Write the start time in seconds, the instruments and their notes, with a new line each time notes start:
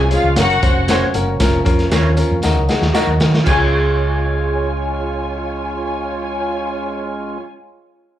Already playing: fingered electric bass C2, tonewheel organ F3 G#3 C#4
0.11 upright piano C#4 F4 G#4, string section F4 F5, closed hi-hat, tambourine, muted conga
0.24 fingered electric bass C#2
0.36 fingered electric bass F#1, tonewheel organ F#3 A#3, upright piano C#4 F#4 A#4, string section F#4 F#5, snare, closed hi-hat, tambourine, low conga
0.50 closed hi-hat
0.63 fingered electric bass F1, upright piano C#4 F#4 C5, kick, closed hi-hat, tambourine
0.88 upright piano C#4 F#4 C5, clean electric guitar F#4 A#4 C#5, snare, closed hi-hat, tambourine, high conga
1.02 high conga
1.14 fingered electric bass F#1, upright piano C#4 F#4 A#4, closed hi-hat, tambourine, high conga
1.40 fingered electric bass F1, tonewheel organ F3, upright piano C#4 F4 A#4, kick, snare, closed hi-hat, tambourine, muted conga
1.65 fingered electric bass F2, upright piano C#4 F4 A#4, kick, closed hi-hat, tambourine, muted conga
1.79 snare, closed hi-hat
1.91 fingered electric bass D#2, upright piano C#4 F4 A#4, clean electric guitar F4 A#4 C#5, snare, closed hi-hat, tambourine, high conga
2.17 upright piano C#4 F4 A#4, closed hi-hat, tambourine, muted conga
2.31 fingered electric bass F2
2.43 fingered electric bass D#2, tonewheel organ F#3 D#4, upright piano D#4 F#4 A#4, snare, tambourine, low conga
2.56 fingered electric bass C#2
2.69 upright piano D#4 F#4 G#4, snare, tambourine, low conga
2.82 fingered electric bass D#2, snare
2.93 upright piano D#4 F#4 A#4, clean electric guitar F#4 A#4 D#5, muted fingered electric bass stroke, snare, tambourine, high conga
3.07 fingered electric bass D#2, high conga
3.20 fingered electric bass D#3, upright piano D#4 F#4 A#4, snare, tambourine
3.34 snare
3.44 fingered electric bass C#2, upright piano C#4 F4, clean electric guitar F4 G#4, string section F4 C#5 G#5, kick, crash, tambourine, muted conga
3.49 tonewheel organ G#3 C#4 F4, upright piano G#4, clean electric guitar C#5